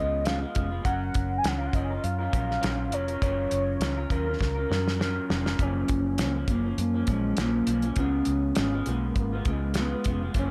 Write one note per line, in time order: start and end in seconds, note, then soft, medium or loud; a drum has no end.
0.00 0.44 C#2 medium
0.00 0.24 C#3 soft
0.00 0.24 G#3 medium
0.00 0.24 B3 medium
0.00 0.25 F4 medium
0.00 0.27 D#5 medium
0.25 0.41 C#3 medium
0.25 0.42 G#3 medium
0.25 0.41 B3 medium
0.25 0.39 F4 medium
0.25 0.71 F5 loud
0.25 snare loud
0.25 closed hi-hat medium
0.41 0.54 G#3 soft
0.41 0.55 B3 soft
0.41 0.55 F4 soft
0.55 0.79 F1 medium
0.55 0.71 C#3 soft
0.55 0.71 G#3 medium
0.55 0.70 B3 medium
0.55 0.69 F4 medium
0.55 kick medium
0.55 closed hi-hat medium
0.70 0.83 G#3 soft
0.70 0.84 B3 soft
0.70 0.84 F4 medium
0.84 1.09 F#1 medium
0.84 1.43 F#3 medium
0.84 1.44 C#4 medium
0.84 1.45 A#4 medium
0.84 1.39 F#5 loud
0.84 kick medium
0.84 closed hi-hat medium
1.14 1.39 F#1 medium
1.14 kick medium
1.14 closed hi-hat medium
1.38 1.49 G#5 medium
1.44 1.68 C#2 medium
1.44 1.60 F#3 medium
1.44 1.61 C#4 medium
1.44 1.61 F4 medium
1.44 1.59 A#4 medium
1.44 snare loud
1.44 closed hi-hat medium
1.48 1.59 F#5 medium
1.57 1.74 A#4 soft
1.57 1.68 F5 medium
1.62 1.73 C#4 soft
1.62 1.75 F4 soft
1.66 1.76 F#5 medium
1.73 1.97 F#1 medium
1.73 1.90 F#3 medium
1.73 1.91 C#4 medium
1.73 1.90 F4 medium
1.73 1.89 A#4 medium
1.73 2.05 D#5 medium
1.73 kick medium
1.73 closed hi-hat medium
1.91 2.19 C#4 soft
1.91 2.19 F4 soft
1.91 2.17 A#4 soft
2.04 2.27 F#2 loud
2.04 2.95 F5 loud
2.04 closed hi-hat medium
2.19 2.32 C#4 soft
2.19 2.32 F4 soft
2.19 2.33 A#4 soft
2.31 2.57 A#1 medium
2.31 2.60 F#3 medium
2.31 2.60 C#4 medium
2.31 2.61 F4 soft
2.31 2.61 A#4 medium
2.31 kick medium
2.31 closed hi-hat medium
2.51 snare soft
2.61 2.93 A#1 medium
2.61 2.90 F#3 medium
2.61 2.91 C#4 medium
2.61 2.92 F4 medium
2.61 2.92 A#4 medium
2.61 snare loud
2.61 closed hi-hat medium
2.91 3.17 F1 medium
2.91 3.08 F#3 soft
2.91 3.09 C#4 soft
2.91 3.07 F4 medium
2.91 3.07 A#4 medium
2.91 3.22 C#5 loud
2.91 closed hi-hat medium
3.08 3.20 C#4 soft
3.08 3.21 F4 soft
3.08 3.21 A#4 soft
3.08 closed hi-hat soft
3.22 3.46 F#1 medium
3.22 3.80 F#3 medium
3.22 3.81 C#4 medium
3.22 3.81 F4 medium
3.22 3.81 A#4 medium
3.22 4.08 C#5 loud
3.22 kick medium
3.22 closed hi-hat medium
3.51 3.76 F#1 medium
3.51 closed hi-hat medium
3.80 4.04 C#2 medium
3.80 3.98 F#3 medium
3.80 3.98 C#4 medium
3.80 3.97 F4 medium
3.80 3.96 A#4 medium
3.80 snare loud
3.80 closed hi-hat medium
3.97 4.09 C#4 soft
3.97 4.10 F4 medium
3.97 4.11 A#4 medium
4.10 4.35 D#2 medium
4.10 4.27 F#3 medium
4.10 4.27 C#4 medium
4.10 4.26 F4 medium
4.10 4.39 A#4 medium
4.10 4.25 A#4 medium
4.10 kick medium
4.10 closed hi-hat medium
4.26 4.57 C#4 soft
4.26 4.56 F4 soft
4.26 4.54 A#4 soft
4.40 4.64 C#2 medium
4.40 5.26 A#4 medium
4.40 kick medium
4.40 snare medium
4.55 4.69 C#4 soft
4.55 4.70 F4 soft
4.55 4.70 A#4 soft
4.69 5.18 F#2 medium
4.69 4.98 F#3 soft
4.69 4.98 C#4 medium
4.69 4.99 F4 soft
4.69 4.99 A#4 medium
4.69 snare medium
4.88 snare medium
4.99 5.29 F#3 medium
4.99 5.29 C#4 medium
4.99 5.30 F4 medium
4.99 5.30 A#4 medium
4.99 snare medium
5.30 5.54 F1 medium
5.30 5.46 F#3 medium
5.30 5.46 C#4 medium
5.30 5.45 F4 medium
5.30 5.44 A#4 medium
5.30 snare medium
5.45 5.59 C#4 soft
5.45 5.60 F4 soft
5.45 5.59 A#4 medium
5.45 snare medium
5.59 5.83 F#1 loud
5.59 6.17 F#2 medium
5.59 6.18 F3 medium
5.59 6.18 A#3 medium
5.59 6.19 C#4 medium
5.59 6.52 C#4 loud
5.59 kick medium
5.59 closed hi-hat medium
5.88 6.21 F#1 medium
5.88 kick medium
5.88 closed hi-hat medium
6.18 6.43 C#2 medium
6.18 6.35 F#2 medium
6.18 6.35 F3 medium
6.18 6.35 A#3 medium
6.18 6.34 C#4 medium
6.18 snare loud
6.18 closed hi-hat medium
6.35 6.48 F3 soft
6.35 6.49 A#3 soft
6.35 6.49 C#4 soft
6.48 6.72 F#1 medium
6.48 6.65 F#2 medium
6.48 6.66 F3 medium
6.48 6.65 A#3 medium
6.48 6.79 A#3 medium
6.48 6.63 C#4 medium
6.48 kick medium
6.48 closed hi-hat medium
6.65 6.95 F3 soft
6.65 6.94 A#3 soft
6.65 6.93 C#4 soft
6.78 7.02 F#2 loud
6.78 7.12 A#3 medium
6.78 closed hi-hat medium
6.94 7.07 F3 soft
6.94 7.08 A#3 soft
6.94 7.08 C#4 soft
7.07 7.32 A#1 medium
7.07 7.36 F#2 soft
7.07 7.37 F3 medium
7.07 7.42 G#3 medium
7.07 7.37 A#3 medium
7.07 7.38 C#4 medium
7.07 kick medium
7.07 closed hi-hat medium
7.37 7.62 A#1 medium
7.37 7.65 F#2 medium
7.37 7.66 F3 medium
7.37 7.67 A#3 medium
7.37 7.85 A#3 medium
7.37 7.67 C#4 medium
7.37 snare loud
7.37 closed hi-hat medium
7.66 7.91 B1 medium
7.66 7.83 F#2 medium
7.66 7.84 F3 medium
7.66 7.83 A#3 medium
7.66 7.82 C#4 medium
7.66 closed hi-hat medium
7.82 7.97 F3 soft
7.82 7.97 A#3 soft
7.82 7.97 C#4 soft
7.82 closed hi-hat soft
7.96 8.21 C#2 medium
7.96 8.55 C#3 medium
7.96 8.56 G#3 medium
7.96 8.56 B3 medium
7.96 8.91 C#4 loud
7.96 8.57 F4 medium
7.96 kick medium
7.96 closed hi-hat medium
8.25 8.51 C#2 medium
8.25 closed hi-hat medium
8.55 8.81 G#1 medium
8.55 8.73 C#3 medium
8.55 8.73 G#3 medium
8.55 8.73 B3 medium
8.55 8.71 F4 medium
8.55 snare loud
8.55 closed hi-hat medium
8.73 8.85 G#3 soft
8.73 8.87 B3 soft
8.73 8.86 F4 medium
8.86 9.11 B1 medium
8.86 9.32 C#3 soft
8.86 9.33 G#3 medium
8.86 9.18 A#3 medium
8.86 9.32 B3 medium
8.86 9.31 F4 medium
8.86 closed hi-hat medium
9.16 9.40 G#1 medium
9.16 kick medium
9.16 closed hi-hat medium
9.20 9.52 A#3 loud
9.33 9.45 G#3 soft
9.33 9.45 B3 soft
9.33 9.46 F4 medium
9.45 9.93 C#2 medium
9.45 9.74 C#3 medium
9.45 9.75 G#3 medium
9.45 9.76 B3 medium
9.45 9.76 F4 medium
9.45 kick medium
9.45 closed hi-hat medium
9.51 9.78 G#3 medium
9.74 9.92 C#3 medium
9.74 9.92 G#3 medium
9.74 9.92 B3 medium
9.74 9.91 F4 medium
9.74 snare loud
9.74 closed hi-hat medium
9.80 10.21 B3 medium
9.92 10.05 G#3 soft
9.92 10.06 B3 soft
9.92 10.05 F4 soft
10.04 10.29 F1 medium
10.04 10.22 C#3 medium
10.04 10.22 G#3 medium
10.04 10.22 B3 medium
10.04 10.20 F4 medium
10.04 kick medium
10.04 closed hi-hat medium
10.21 10.35 G#3 soft
10.21 10.35 B3 soft
10.21 10.35 F4 medium
10.34 10.51 F#1 loud
10.34 10.51 F#2 medium
10.34 10.51 F3 medium
10.34 10.51 A#3 medium
10.34 10.51 C#4 medium
10.34 kick medium
10.34 closed hi-hat medium
10.39 10.51 C#4 loud